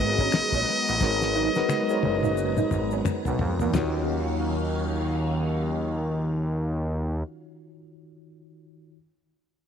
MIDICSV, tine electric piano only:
0, 0, Header, 1, 2, 480
1, 0, Start_track
1, 0, Tempo, 681818
1, 707, Time_signature, 4, 2, 24, 8
1, 6809, End_track
2, 0, Start_track
2, 0, Title_t, "Tine electric piano"
2, 0, Program_c, 0, 4
2, 0, Control_c, 0, 64, 127
2, 0, Note_on_c, 0, 56, 79
2, 0, Note_on_c, 0, 63, 66
2, 0, Note_on_c, 0, 66, 70
2, 0, Note_on_c, 0, 68, 69
2, 0, Note_on_c, 0, 70, 65
2, 0, Note_on_c, 0, 71, 73
2, 0, Note_on_c, 0, 73, 91
2, 280, Note_off_c, 0, 56, 0
2, 282, Note_off_c, 0, 63, 0
2, 283, Note_off_c, 0, 66, 0
2, 285, Note_off_c, 0, 70, 0
2, 309, Note_off_c, 0, 73, 0
2, 715, Note_on_c, 0, 56, 92
2, 719, Note_on_c, 0, 63, 83
2, 723, Note_on_c, 0, 66, 82
2, 725, Note_on_c, 0, 70, 85
2, 730, Note_on_c, 0, 73, 103
2, 1058, Note_off_c, 0, 56, 0
2, 1060, Note_off_c, 0, 63, 0
2, 1062, Note_off_c, 0, 66, 0
2, 1063, Note_off_c, 0, 70, 0
2, 1066, Note_off_c, 0, 73, 0
2, 1093, Note_on_c, 0, 56, 92
2, 1095, Note_on_c, 0, 63, 90
2, 1099, Note_on_c, 0, 66, 94
2, 1103, Note_on_c, 0, 70, 88
2, 1105, Note_off_c, 0, 71, 0
2, 1105, Note_on_c, 0, 71, 101
2, 1308, Note_off_c, 0, 56, 0
2, 1309, Note_off_c, 0, 63, 0
2, 1311, Note_off_c, 0, 66, 0
2, 1313, Note_off_c, 0, 70, 0
2, 1314, Note_off_c, 0, 71, 0
2, 1334, Note_on_c, 0, 56, 93
2, 1338, Note_on_c, 0, 63, 75
2, 1341, Note_on_c, 0, 66, 77
2, 1345, Note_on_c, 0, 70, 80
2, 1346, Note_on_c, 0, 72, 82
2, 1375, Note_off_c, 0, 72, 0
2, 1392, Note_on_c, 0, 73, 99
2, 2200, Note_off_c, 0, 56, 0
2, 2201, Note_off_c, 0, 63, 0
2, 2203, Note_off_c, 0, 66, 0
2, 2205, Note_off_c, 0, 70, 0
2, 2228, Note_off_c, 0, 73, 0
2, 2607, Note_on_c, 0, 51, 77
2, 2620, Note_on_c, 0, 63, 81
2, 2632, Note_on_c, 0, 65, 79
2, 2635, Control_c, 0, 64, 0
2, 2641, Note_off_c, 0, 68, 0
2, 2645, Note_on_c, 0, 66, 86
2, 2657, Note_on_c, 0, 73, 90
2, 2760, Control_c, 0, 64, 127
2, 5434, Note_off_c, 0, 51, 0
2, 5446, Note_off_c, 0, 63, 0
2, 5459, Note_off_c, 0, 65, 0
2, 5471, Note_off_c, 0, 66, 0
2, 5483, Note_off_c, 0, 73, 0
2, 6317, Control_c, 0, 64, 0
2, 6809, End_track
0, 0, End_of_file